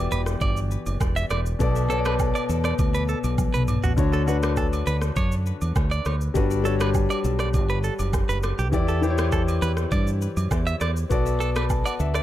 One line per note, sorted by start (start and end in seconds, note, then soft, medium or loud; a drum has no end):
0.00 1.62 E3 medium
0.00 1.60 B3 medium
0.00 1.62 F#4 medium
0.00 1.62 G4 medium
0.00 1.62 D5 loud
0.12 0.34 E1 medium
0.12 0.21 B4 medium
0.12 shaker medium
0.26 cross-stick medium
0.26 shaker medium
0.41 0.76 G1 medium
0.41 0.59 D5 medium
0.41 kick loud
0.41 high agogo medium
0.41 shaker medium
0.57 shaker medium
0.71 shaker medium
0.86 0.97 F#1 medium
0.86 high agogo medium
0.86 shaker soft
1.00 1.23 E1 medium
1.00 kick loud
1.00 cross-stick medium
1.00 low woodblock medium
1.00 shaker medium
1.16 1.25 E5 medium
1.16 shaker medium
1.30 1.53 E1 medium
1.30 1.40 D5 medium
1.30 cross-stick medium
1.30 high agogo medium
1.30 shaker medium
1.46 shaker soft
1.59 2.31 B1 loud
1.59 1.87 B2 medium
1.59 1.88 B3 medium
1.59 1.88 A4 medium
1.59 1.89 D5 loud
1.59 kick loud
1.59 shaker medium
1.76 shaker medium
1.89 3.01 B2 medium
1.89 3.01 B3 medium
1.89 1.99 A4 medium
1.89 3.01 A4 medium
1.89 1.97 C#5 medium
1.89 shaker medium
1.98 3.05 D5 loud
2.05 2.14 B4 medium
2.05 cross-stick loud
2.05 high agogo medium
2.05 shaker medium
2.19 kick medium
2.19 low woodblock medium
2.19 shaker medium
2.35 2.44 D5 medium
2.35 high agogo medium
2.35 shaker medium
2.49 2.72 E2 medium
2.49 shaker medium
2.64 2.73 D5 medium
2.64 cross-stick medium
2.64 shaker medium
2.79 3.13 D2 medium
2.79 kick loud
2.79 high agogo medium
2.79 shaker medium
2.94 3.03 B4 medium
2.94 shaker medium
3.09 3.18 A4 medium
3.09 shaker soft
3.24 3.47 B1 medium
3.24 high agogo medium
3.24 shaker soft
3.38 kick loud
3.38 high tom medium
3.38 low woodblock medium
3.38 shaker medium
3.54 3.76 B1 medium
3.54 3.62 B4 medium
3.54 mid tom medium
3.54 shaker medium
3.68 mid tom medium
3.68 high agogo medium
3.68 shaker medium
3.84 3.94 A1 medium
3.84 3.92 F#4 medium
3.84 floor tom medium
3.84 shaker soft
3.97 4.83 D2 loud
3.97 4.25 D3 medium
3.97 4.25 D4 medium
3.97 4.26 F#4 medium
3.97 4.26 C#5 loud
3.97 kick loud
3.97 shaker medium
4.13 4.22 A4 medium
4.13 shaker medium
4.26 5.38 D3 medium
4.26 5.39 D4 medium
4.26 4.37 F#4 medium
4.26 5.39 F#4 medium
4.26 5.39 B4 loud
4.26 shaker medium
4.43 cross-stick loud
4.43 high agogo medium
4.43 shaker medium
4.57 4.66 A4 medium
4.57 kick medium
4.57 low woodblock medium
4.57 shaker medium
4.73 high agogo medium
4.73 shaker medium
4.87 5.10 D2 medium
4.87 4.96 B4 medium
4.87 shaker medium
5.02 cross-stick medium
5.02 shaker medium
5.16 5.51 F#2 medium
5.16 5.34 C#5 medium
5.16 kick loud
5.16 high agogo medium
5.16 shaker medium
5.32 shaker medium
5.46 shaker soft
5.61 5.73 E2 medium
5.61 high agogo medium
5.61 shaker soft
5.76 5.99 D2 medium
5.76 kick loud
5.76 cross-stick medium
5.76 low woodblock medium
5.76 shaker medium
5.91 6.06 D5 medium
5.91 shaker medium
6.05 6.28 D2 medium
6.05 6.15 C#5 medium
6.05 cross-stick medium
6.05 high agogo medium
6.05 shaker medium
6.21 shaker soft
6.34 7.07 G1 loud
6.34 6.62 G3 medium
6.34 6.63 D4 medium
6.34 6.63 F#4 medium
6.34 6.64 B4 loud
6.34 kick loud
6.34 shaker medium
6.51 shaker medium
6.64 7.76 G3 medium
6.64 7.76 D4 medium
6.64 7.77 F#4 medium
6.64 6.74 A4 medium
6.64 7.77 C#5 loud
6.64 shaker medium
6.80 6.89 B4 medium
6.80 cross-stick loud
6.80 high agogo medium
6.80 shaker medium
6.94 kick medium
6.94 low woodblock medium
6.94 shaker medium
7.10 7.19 D5 medium
7.10 high agogo medium
7.10 shaker medium
7.24 7.56 B1 loud
7.24 shaker medium
7.39 7.48 D5 medium
7.39 cross-stick medium
7.39 shaker medium
7.54 7.89 G1 medium
7.54 kick loud
7.54 high agogo medium
7.54 shaker medium
7.69 7.78 B4 medium
7.69 shaker medium
7.84 7.93 A4 medium
7.84 shaker medium
7.99 8.22 F#1 medium
7.99 high agogo medium
7.99 shaker medium
8.13 kick loud
8.13 cross-stick medium
8.13 low woodblock medium
8.13 shaker medium
8.29 8.52 F#1 medium
8.29 8.38 B4 medium
8.29 shaker medium
8.43 cross-stick medium
8.43 high agogo medium
8.43 shaker medium
8.59 8.73 B1 medium
8.59 8.67 G4 medium
8.59 shaker soft
8.72 9.58 E2 loud
8.72 9.00 E3 medium
8.72 9.01 E4 medium
8.72 9.01 G4 medium
8.72 9.01 D5 loud
8.72 kick loud
8.72 shaker medium
8.88 9.03 A4 medium
8.88 shaker medium
9.02 10.14 E3 medium
9.02 10.14 E4 medium
9.02 9.12 G4 medium
9.02 10.14 G4 medium
9.02 9.10 C5 medium
9.02 shaker medium
9.11 10.18 C#5 loud
9.18 cross-stick loud
9.18 high agogo medium
9.18 shaker medium
9.32 9.42 A4 medium
9.32 kick medium
9.32 low woodblock medium
9.32 shaker medium
9.48 high agogo medium
9.48 shaker medium
9.62 9.85 E2 loud
9.62 9.71 B4 medium
9.62 shaker medium
9.77 cross-stick medium
9.77 shaker medium
9.92 10.26 G2 loud
9.92 10.10 D5 medium
9.92 kick loud
9.92 high agogo medium
9.92 shaker medium
10.07 shaker medium
10.22 shaker medium
10.37 10.48 F#2 medium
10.37 high agogo medium
10.37 shaker medium
10.51 10.74 E2 medium
10.51 kick loud
10.51 cross-stick medium
10.51 low woodblock medium
10.51 shaker medium
10.67 10.75 E5 medium
10.67 shaker medium
10.81 11.04 E2 medium
10.81 10.90 D5 medium
10.81 cross-stick medium
10.81 high agogo medium
10.81 shaker medium
10.96 shaker soft
11.09 11.82 B1 loud
11.09 11.38 B3 medium
11.09 11.38 F#4 medium
11.09 11.39 A4 medium
11.09 11.39 D5 loud
11.09 kick loud
11.09 shaker medium
11.26 shaker medium
11.40 11.50 A4 medium
11.40 shaker medium
11.56 11.64 B4 medium
11.56 11.69 B5 medium
11.56 cross-stick loud
11.56 high agogo medium
11.56 shaker medium
11.70 11.85 A5 medium
11.70 kick medium
11.70 low woodblock medium
11.70 shaker medium
11.86 11.94 D5 medium
11.86 11.99 F#5 medium
11.86 high agogo medium
11.86 shaker medium
12.00 12.23 D2 medium
12.00 12.14 E5 medium
12.00 shaker medium
12.14 12.23 D5 medium
12.14 cross-stick medium
12.14 shaker medium